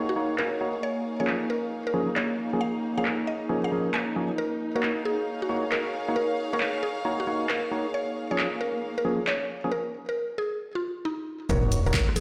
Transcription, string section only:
Already playing: D#4 G#4 C#5 F5
0.83 A#3 D#4
4.62 G#4
4.73 F5
4.89 C#5
7.94 A#3

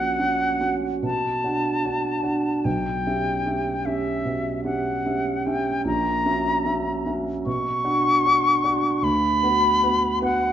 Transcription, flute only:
Already playing: F#5
1.04 A5
2.65 G5
3.85 E5
4.65 F#5
5.46 G5
5.86 A#5
7.46 C#6
9.04 B5
10.23 F#5

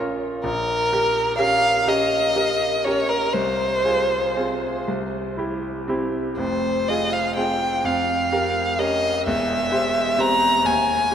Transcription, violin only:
0.45 A#4
1.38 F5
1.88 D#5
2.84 C#5
3.08 A#4
3.32 C5
6.38 C5
6.88 D#5
7.12 F5
7.36 G5
7.85 F5
8.79 D#5
9.27 E5
10.20 A#5
10.66 G#5

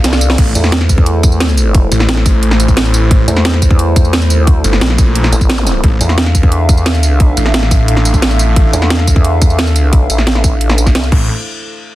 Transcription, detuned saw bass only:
0.38 A1
1.92 A1
2.77 A1
4.64 G1
4.81 A#1
5.84 A1
7.37 A1
8.22 A1
8.56 A1
11.12 A1

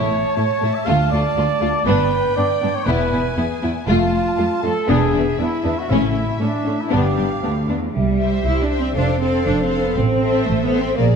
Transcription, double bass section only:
Already playing: A1
0.88 D2
1.87 G1
2.87 E1
3.88 F1
4.89 E1
5.90 A1
6.92 G1
7.94 C2
8.45 C2
8.95 F1
9.45 F1
9.97 A1
10.47 A1
10.98 A#1

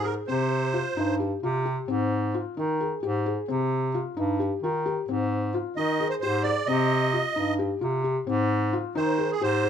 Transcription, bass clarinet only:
Already playing: G#2
0.28 C3
0.96 G2
1.43 C3
1.88 G#2
2.57 D#3
3.02 G#2
3.48 C3
4.17 G2
4.63 D#3
5.08 G#2
5.76 D#3
6.22 G#2
6.68 C3
7.36 G2
7.82 C3
8.27 G#2
8.96 D#3
9.41 G#2

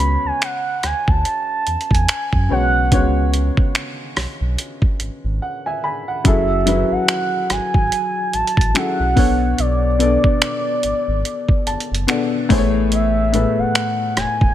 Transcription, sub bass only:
Already playing: C#2
0.24 D2
0.83 D2
1.08 D2
1.67 E2
1.91 E2
2.33 F#2
2.50 B1
2.92 C#2
3.57 B1
4.17 B1
4.41 B1
5.00 G#1
5.24 G#1
6.25 F#1
6.91 G#1
7.50 G#1
7.74 G#1
8.34 A1
8.57 A1
8.99 B1
9.17 B1
9.59 B1
10.24 G#1
10.84 G#1
11.08 G#1
11.67 F#1
11.91 F#1
12.50 A1
13.58 E1
14.17 E1
14.41 E1

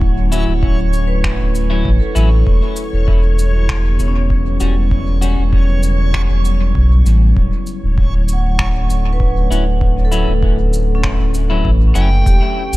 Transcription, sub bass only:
Already playing: D1
0.48 D1
1.40 D1
1.85 A1
2.16 A1
2.47 E1
2.93 E1
3.99 E1
4.61 E1
5.38 E1
6.30 E1
6.75 B1
7.06 A1
7.37 D1
7.84 D1
8.90 D1
9.50 D1
10.28 D1
11.20 D1
11.65 A1
11.96 F#1
12.26 E1
12.73 E1

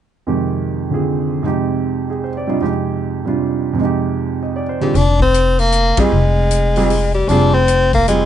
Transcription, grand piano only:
0.27 F2 C3 D#3 G#3 G4
0.91 D3 C4 F4 G#4
1.43 F2 C3 G#3 D#4
1.47 G4
2.10 G#4
2.24 C5
2.37 D5
2.47 C3 G3 D4 F4 D#5
2.61 F2 C3 G#3 D#4 G4
3.25 C3 G3 D4 F4
3.73 F2 C3
3.79 G#3 D#4
3.84 G4
4.43 D#5
4.56 D5
4.69 C5
4.81 D3 C4 F4 G#4
5.98 G3 C4 F4 G#4
6.77 G3 C4 F4 G#4
7.30 G3 C4 F4 G#4
8.08 G3 C4 F4 G#4

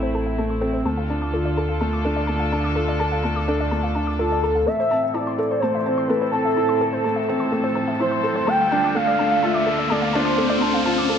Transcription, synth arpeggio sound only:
0.03 C5
0.15 A5
0.26 E5
0.38 A5
0.50 C6
0.61 A4
0.73 C5
0.86 A5
0.97 F5
1.11 A5
1.22 D6
1.34 A4
1.45 D5
1.57 A5
1.69 F5
1.81 A5
1.93 D6
2.05 A4
2.16 D5
2.27 A5
2.40 F5
2.52 A5
2.64 D6
2.76 A4
2.88 D5
3.00 A5
3.12 F5
3.24 A5
3.36 D6
3.48 A4
3.60 D5
3.71 A5
3.83 F5
3.95 A5
4.07 D6
4.19 A4
4.32 D5
4.44 A5
4.55 F5
4.67 A4
4.80 C5
4.91 A5
5.03 E5
5.15 A5
5.27 C6
5.39 A4
5.51 C5
5.62 A5
5.75 E5
5.86 A5
5.98 C6
6.10 A4
6.22 C5
6.33 A5
6.45 E5
6.57 A5
6.69 C6
6.81 A4
6.93 C5
7.04 A5
7.16 E5
7.29 A5
7.40 C6
7.52 A4
7.64 C5
7.75 A5
7.88 E5
8.00 A5
8.12 C6
8.23 A4
8.36 C5
8.47 A5
8.60 F5
8.72 A5
8.84 D6
8.95 A4
9.07 D5
9.19 A5
9.31 F5
9.43 A5
9.54 D6
9.66 A4
9.78 D5
9.90 A5
10.02 F5
10.13 A5
10.25 D6
10.38 A4
10.50 D5
10.62 A5
10.74 F5
10.86 A5
10.98 D6
11.09 A4

